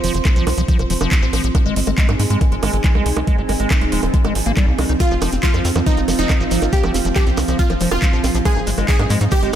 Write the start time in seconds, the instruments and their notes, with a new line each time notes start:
Already playing: ambient pad F3 C4, analog synth pad F4 C5 C6
0.04 analog synth bass F1, acid bass F3, open hi-hat
0.14 analog synth bass F1, acid bass F3, closed hi-hat
0.25 acid bass F3, kick, clap, closed hi-hat, high bongo
0.36 analog synth bass C2, acid bass F3, closed hi-hat
0.47 analog synth bass C2, acid bass F3, open hi-hat, high bongo
0.58 analog synth bass C2, acid bass F3, closed hi-hat
0.68 acid bass F3, kick, closed hi-hat
0.79 analog synth bass F1, acid bass F3, closed hi-hat, high bongo
0.90 analog synth bass F1, acid bass F3, open hi-hat
1.01 analog synth bass F1, acid bass F3, closed hi-hat, high bongo
1.12 acid bass F3, kick, clap, closed hi-hat
1.22 analog synth bass A#1, acid bass F3
1.33 analog synth bass A#1, acid bass F3, open hi-hat, high bongo
1.44 analog synth bass A#1, acid bass F3, closed hi-hat
1.55 acid bass G#3, analog synth pad D#4, kick, closed hi-hat, high bongo
1.65 analog synth bass G#1, acid bass G#3, analog synth pad G#4
1.76 analog synth bass G#1, acid bass G#3, open hi-hat
1.87 analog synth bass G#1, acid bass G#3, analog synth pad G#5, closed hi-hat, high bongo
1.98 acid bass G#3, kick, clap, closed hi-hat
2.09 analog synth bass G#2, acid bass G#3, closed hi-hat, high bongo
2.20 analog synth bass G#2, acid bass G#3, open hi-hat
2.30 analog synth bass G#2, acid bass G#3, closed hi-hat
2.41 acid bass G#3, kick, closed hi-hat, high bongo
2.52 analog synth bass G#1, acid bass G#3, closed hi-hat
2.63 analog synth bass G#1, acid bass G#3, open hi-hat, high bongo
2.73 analog synth bass G#1, acid bass G#3, closed hi-hat
2.84 acid bass G#3, kick, clap, closed hi-hat
2.95 analog synth bass C2, acid bass G#3, high bongo
3.06 analog synth bass C2, acid bass G#3, open hi-hat
3.17 analog synth bass C2, acid bass G#3, closed hi-hat, high bongo
3.27 acid bass G#3, kick, closed hi-hat
3.38 analog synth bass G#1, acid bass G#3
3.49 analog synth bass G#1, acid bass G#3, open hi-hat, high bongo
3.60 analog synth bass G#1, acid bass G#3, closed hi-hat
3.71 kick, clap, closed hi-hat, high bongo
3.81 analog synth bass D#1, acid bass G#3, closed hi-hat
3.92 analog synth bass D#1, acid bass G#3, open hi-hat
4.03 analog synth bass D#1, acid bass G#3, closed hi-hat, high bongo
4.14 acid bass G#3, kick, closed hi-hat
4.25 analog synth bass G#1, acid bass G#3, closed hi-hat, high bongo
4.35 analog synth bass G#1, open hi-hat
4.46 analog synth bass G#1, acid bass A#3, closed hi-hat
4.57 acid bass G3, kick, clap, closed hi-hat, high bongo
4.68 analog synth bass C2
4.79 analog synth bass C2, acid bass G#3, open hi-hat, high bongo
4.89 analog synth bass C2, acid bass D#4, closed hi-hat
5.00 acid bass C4, analog synth pad C4, supersaw synth F4, kick, closed hi-hat, high bongo, shekere
5.07 analog synth bass F1, acid bass F3, analog synth pad F4, shekere
5.22 analog synth bass F1, acid bass F3, open hi-hat, high bongo, shekere
5.32 analog synth bass F1, acid bass C4, closed hi-hat, shekere
5.43 acid bass F3, supersaw synth F4, analog synth pad F5, kick, clap, closed hi-hat, shekere
5.53 analog synth bass F2, acid bass F3, closed hi-hat, high bongo, shekere
5.65 analog synth bass F2, acid bass C4, open hi-hat, shekere
5.76 analog synth bass F2, acid bass F3, closed hi-hat, high bongo, shekere
5.86 acid bass F3, supersaw synth D#4, kick, closed hi-hat, shekere
5.97 analog synth bass F1, acid bass C4, closed hi-hat, shekere
6.08 analog synth bass F1, acid bass F3, open hi-hat, high bongo, shekere
6.19 analog synth bass F1, acid bass F3, supersaw synth D#4, closed hi-hat, shekere
6.29 acid bass C4, kick, clap, closed hi-hat, high bongo, shekere
6.40 analog synth bass G#1, acid bass F3, shekere
6.51 analog synth bass G#1, acid bass F3, open hi-hat, shekere
6.62 analog synth bass G#1, acid bass C4, closed hi-hat, high bongo, shekere
6.73 acid bass F3, supersaw synth G4, kick, closed hi-hat, shekere
6.83 analog synth bass F1, acid bass F3, high bongo, shekere
6.94 analog synth bass F1, acid bass C4, open hi-hat, shekere
7.05 analog synth bass F1, acid bass F3, closed hi-hat, shekere
7.15 acid bass F3, supersaw synth G4, kick, clap, closed hi-hat, high bongo, shekere
7.27 analog synth bass C2, acid bass C4, closed hi-hat, shekere
7.37 analog synth bass C2, acid bass F3, open hi-hat, high bongo, shekere
7.48 analog synth bass C2, acid bass F3, closed hi-hat, shekere
7.59 acid bass C4, supersaw synth F4, kick, closed hi-hat, shekere
7.70 analog synth bass F1, acid bass F3, closed hi-hat, high bongo, shekere
7.80 analog synth bass F1, acid bass F3, open hi-hat, shekere
7.91 analog synth bass F1, acid bass C4, supersaw synth F4, closed hi-hat, high bongo, shekere
8.02 acid bass F3, kick, clap, closed hi-hat, shekere
8.13 analog synth bass A#1, acid bass F3, shekere
8.24 analog synth bass A#1, acid bass C4, open hi-hat, high bongo, shekere
8.35 analog synth bass A#1, acid bass F3, closed hi-hat, shekere
8.45 acid bass G#3, analog synth pad D#4, supersaw synth G#4, kick, closed hi-hat, high bongo, shekere
8.56 analog synth bass G#1, acid bass D#4, shekere
8.67 analog synth bass G#1, acid bass G#3, analog synth pad G#3, open hi-hat, shekere
8.78 analog synth bass G#1, acid bass G#3, closed hi-hat, high bongo, shekere
8.89 acid bass D#4, supersaw synth G#4, analog synth pad D#5, kick, clap, closed hi-hat, shekere
8.99 analog synth bass G#2, acid bass G#3, closed hi-hat, high bongo, shekere
9.10 analog synth bass G#2, acid bass G#3, open hi-hat, shekere
9.21 analog synth bass G#2, acid bass D#4, closed hi-hat, shekere
9.31 acid bass G#3, supersaw synth G4, kick, closed hi-hat, high bongo, shekere
9.42 analog synth bass G#1, acid bass G#3, closed hi-hat, shekere